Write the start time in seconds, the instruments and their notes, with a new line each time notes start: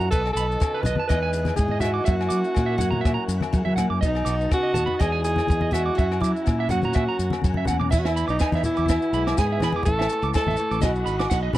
Already playing: steel-string acoustic guitar A#2 E4, tonewheel organ F#5
0.01 maracas
0.10 fingered electric bass B1, steel-string acoustic guitar B2 D#3 F#4, alto saxophone A4, tonewheel organ B4 D#5 A5, clean electric guitar B4, muted steel-string acoustic guitar stroke, kick, maracas
0.26 cross-stick, low agogo
0.33 fingered electric bass B1, steel-string acoustic guitar F#4, alto saxophone A4, clean electric guitar B5, maracas
0.37 closed hi-hat
0.51 maracas
0.60 steel-string acoustic guitar C#3, kick, cross-stick, low agogo, maracas
0.74 clean electric guitar B4
0.82 fingered electric bass B1, steel-string acoustic guitar D#3, alto saxophone B4, low conga, maracas
0.86 clean electric guitar D#5, closed hi-hat
0.96 clean electric guitar A5, high conga
1.07 steel-string acoustic guitar E2 E3 G#3 D#4, fingered electric bass E2, alto saxophone B4, clean electric guitar D#5, tonewheel organ G#5, kick, cross-stick, low agogo, maracas
1.12 steel-string acoustic guitar G#4
1.23 clean electric guitar G#5
1.33 steel-string acoustic guitar G#4, closed hi-hat, maracas
1.45 cross-stick, high conga, low agogo, maracas
1.56 fingered electric bass G#2, steel-string acoustic guitar D#4, alto saxophone G#4, kick, high conga, maracas
1.68 clean electric guitar D#5, high conga
1.80 steel-string acoustic guitar E3 G#3, alto saxophone F#4, clean electric guitar E5, cross-stick, closed hi-hat, low conga, low agogo, maracas
1.94 clean electric guitar D6
2.04 steel-string acoustic guitar F#2 F#3 A#3 C#4, fingered electric bass F#2, tonewheel organ A#4 F#5, clean electric guitar E5, kick, maracas
2.09 steel-string acoustic guitar E4
2.21 cross-stick, low agogo
2.29 fingered electric bass F#3, steel-string acoustic guitar E4, clean electric guitar D6, maracas
2.33 closed hi-hat
2.44 maracas
2.55 fingered electric bass A#2, steel-string acoustic guitar C#4, kick, cross-stick, low agogo, maracas
2.66 clean electric guitar E5
2.78 fingered electric bass F#2, steel-string acoustic guitar F#3 A#3, clean electric guitar F#5, closed hi-hat, low conga, maracas
2.91 fingered electric bass A#2, clean electric guitar A#5, high conga
3.01 clean electric guitar E5
3.05 fingered electric bass A#2, kick, cross-stick, low agogo, maracas
3.14 clean electric guitar A#5
3.28 fingered electric bass F#2, steel-string acoustic guitar E4, closed hi-hat, maracas
3.41 cross-stick, high conga, low agogo, maracas
3.53 steel-string acoustic guitar C#3 C#4, fingered electric bass F#3, kick, high conga, maracas
3.65 fingered electric bass F#3, clean electric guitar E5, high conga
3.76 steel-string acoustic guitar A#3, clean electric guitar F#5, cross-stick, closed hi-hat, low conga, low agogo, maracas
3.90 fingered electric bass F#2, clean electric guitar D6
4.01 fingered electric bass B1, steel-string acoustic guitar B2 D#4, tonewheel organ B4 D#5 A5, clean electric guitar D#5, kick, maracas
4.05 alto saxophone D#4
4.15 cross-stick, low agogo
4.25 fingered electric bass B1, steel-string acoustic guitar F#4, clean electric guitar D6, closed hi-hat, maracas
4.41 maracas
4.51 steel-string acoustic guitar C#3, alto saxophone F#4, kick, cross-stick, low agogo, maracas
4.63 clean electric guitar D#5
4.74 fingered electric bass D#2, steel-string acoustic guitar D#3, clean electric guitar A5, closed hi-hat, low conga, maracas
4.86 clean electric guitar B5, high conga
4.99 steel-string acoustic guitar E2 E3 G#3 D#4, fingered electric bass E2, alto saxophone G#4, clean electric guitar D#5, tonewheel organ D#5 G#5, kick, cross-stick, low agogo, maracas
5.12 clean electric guitar G#5
5.24 steel-string acoustic guitar D#4, alto saxophone G#4, closed hi-hat, maracas
5.36 cross-stick, high conga, low agogo, maracas
5.47 fingered electric bass E2, steel-string acoustic guitar D#4, kick, high conga, maracas
5.61 clean electric guitar D#5, high conga
5.71 steel-string acoustic guitar E3 G#3, alto saxophone F#4, clean electric guitar E5, cross-stick, closed hi-hat, low conga, low agogo, maracas
5.86 clean electric guitar D6
5.95 steel-string acoustic guitar F#2 C#4, fingered electric bass F#2, clean electric guitar E5, tonewheel organ F#5 A#5, kick, maracas
6.11 cross-stick, low agogo
6.20 fingered electric bass F#3, steel-string acoustic guitar C#4, alto saxophone E4, clean electric guitar D6, closed hi-hat, low conga, maracas
6.36 maracas
6.46 fingered electric bass A#2, steel-string acoustic guitar C#4, kick, cross-stick, low agogo, maracas
6.60 clean electric guitar E5
6.69 fingered electric bass F#2, steel-string acoustic guitar F#3 A#3, alto saxophone F#4, clean electric guitar F#5, closed hi-hat, low conga, maracas
6.82 fingered electric bass A#2, clean electric guitar A#5, high conga, maracas
6.93 fingered electric bass A#2, clean electric guitar E5, kick, cross-stick, low agogo, maracas
7.09 clean electric guitar A#5
7.19 fingered electric bass F#2, closed hi-hat, maracas
7.30 cross-stick, high conga, low agogo, maracas
7.42 fingered electric bass F#2, steel-string acoustic guitar C#3 C#4, kick, high conga, maracas
7.54 clean electric guitar E5, high conga
7.65 fingered electric bass E2, steel-string acoustic guitar A#3, clean electric guitar F#5, kick, low conga, low agogo, maracas
7.80 clean electric guitar D6, floor tom
7.90 fingered electric bass E2, steel-string acoustic guitar E2, alto saxophone E4, tonewheel organ B4 G#5 B5, clean electric guitar E5, kick, crash, low conga, maracas
7.99 alto saxophone F#4
8.05 alto saxophone E4, clean electric guitar E5, snare, low agogo
8.16 steel-string acoustic guitar B3, clean electric guitar B5, maracas
8.28 fingered electric bass B1, alto saxophone D#4, clean electric guitar D6, maracas
8.39 steel-string acoustic guitar E3, clean electric guitar G#5, muted steel-string acoustic guitar stroke, kick, snare, low agogo, maracas
8.52 fingered electric bass E2, clean electric guitar E5, snare, high conga, maracas
8.63 steel-string acoustic guitar B3, alto saxophone E4, low conga, maracas
8.77 fingered electric bass E2, clean electric guitar D6, maracas
8.86 steel-string acoustic guitar B2, clean electric guitar E5, kick, snare, high conga, low agogo, maracas
9.02 maracas
9.13 fingered electric bass B1, steel-string acoustic guitar G#3, clean electric guitar B5, maracas
9.27 clean electric guitar D6, snare, low agogo, maracas
9.38 fingered electric bass G#2, steel-string acoustic guitar E3, alto saxophone G#4, clean electric guitar G#5, kick, snare, maracas
9.52 clean electric guitar E5
9.60 fingered electric bass E3, steel-string acoustic guitar B3, clean electric guitar B5, snare, low conga, low agogo, maracas
9.72 clean electric guitar D6, high conga
9.83 fingered electric bass A1, steel-string acoustic guitar A2, alto saxophone A4, tonewheel organ A5 C#6, kick, low conga, maracas
9.88 muted clean electric guitar stroke
9.99 clean electric guitar E5, snare, low agogo
10.09 muted steel-string acoustic guitar stroke, maracas
10.22 fingered electric bass C#2, clean electric guitar D6, maracas
10.34 steel-string acoustic guitar G#2, alto saxophone A4, clean electric guitar A5, kick, snare, low agogo, maracas
10.46 fingered electric bass A1, clean electric guitar E5, snare, high conga
10.56 steel-string acoustic guitar A2, maracas
10.71 fingered electric bass A1, clean electric guitar D6, maracas
10.81 fingered electric bass B1, steel-string acoustic guitar B2, clean electric guitar D#5, tonewheel organ D#5 F#5 B5, kick, snare, high conga, low agogo, maracas
10.85 alto saxophone F#4
10.95 maracas
11.06 fingered electric bass G#1, steel-string acoustic guitar D#4, clean electric guitar B5, maracas
11.19 clean electric guitar D6, snare, low agogo, maracas
11.30 fingered electric bass B1, steel-string acoustic guitar D#3 D#4, clean electric guitar F#5, kick, snare, maracas
11.43 clean electric guitar D#5
11.53 fingered electric bass B1, clean electric guitar B5, low conga, maracas